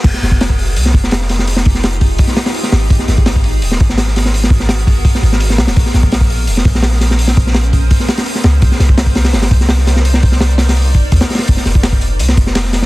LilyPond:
<<
  \new Staff \with { instrumentName = "Ambient pad" } { \time 4/4 \key f \minor \tempo 4 = 168 <ees' f' g' aes'>1~ | <ees' f' g' aes'>1 | <ces' ges' bes'>1~ | <ces' ges' bes'>1 |
<des' aes' c''>1~ | <des' aes' c''>1 | <ees' bes' d''>1~ | <ees' bes' d''>1 |
<f' g' aes' ees''>1 | }
  \new Staff \with { instrumentName = "808-style bass" } { \clef bass \time 4/4 \key f \minor f,,16 r16 f,,4. c,8 f,,4.~ | f,,8 f,,4. r4. aes,,8 | aes,,16 r16 aes,,4. ees,,8 aes,,4.~ | aes,,8 aes,,4. r8 aes,,4 ces,16 ees,,16 |
bes,,16 r16 bes,,4. f,,8 bes,,4.~ | bes,,8 bes,,4. r4. des,8 | c,16 r16 c,4. g,,8 c,4.~ | c,8 c,2 g,,16 r16 ees,16 r8. |
f,,16 r16 f,,4. c,8 f,,4. | }
  \new DrumStaff \with { instrumentName = "Drums" } \drummode { \time 4/4 <cymc hho bd>16 sn16 <hho sn>16 bd16 <hho sn>16 bd16 hho8 hho16 sn16 <hho bd>16 sn16 <hho sn>16 sn16 <hho sn>16 sn16 | hho16 sn16 <hho bd>16 sn16 <hho sn>16 hh16 <hho bd>8 <hho bd>16 sn16 <hho sn>16 <hho sn>16 hho16 sn16 <hho sn>8 | <hho bd>16 sn16 <hho sn>16 bd16 <hho sn>16 bd16 hho8 hho16 sn16 <hho bd>16 sn16 <hho sn>16 sn16 <hho sn>16 sn16 | hho16 sn16 <hho bd>16 sn16 <hho sn>16 hh16 <hho bd>8 <hho bd>16 sn16 hho16 sn16 hho16 sn16 <hho sn>16 <hho sn>16 |
<hho bd>16 sn16 <hho sn>16 bd16 <hho sn>16 bd16 hho8 hho16 sn16 <hho bd>16 sn16 <hho sn>16 sn16 <hho sn>16 sn16 | hho16 sn16 <hho bd>16 sn16 <hho sn>16 hh16 <hho bd>8 <hho bd>16 sn16 <hho sn>16 <hho sn>16 hho16 sn16 <hho sn>8 | <hho bd>16 sn16 <hho sn>16 bd16 <hho sn>16 bd16 <hho sn>16 <hho sn>16 <hho sn>16 <hho sn>16 <hho bd>16 sn16 <hho sn>16 sn16 <hho sn>16 sn16 | hho16 sn16 <hho bd>16 sn16 <hho sn>16 hh16 <hho sn>16 <hho sn>16 hho8 <hho bd>8 <hho bd>16 <hho sn>16 <hho sn>32 <hho sn>32 <hho sn>16 |
<hh hho bd>16 sn16 <hh hho sn>16 bd16 <hh hho sn>16 <hh bd>16 <hh hho>8 <hh hho>16 sn16 <hh hho bd>16 sn16 <hh hho sn>16 sn16 <hh hho sn>16 sn16 | }
>>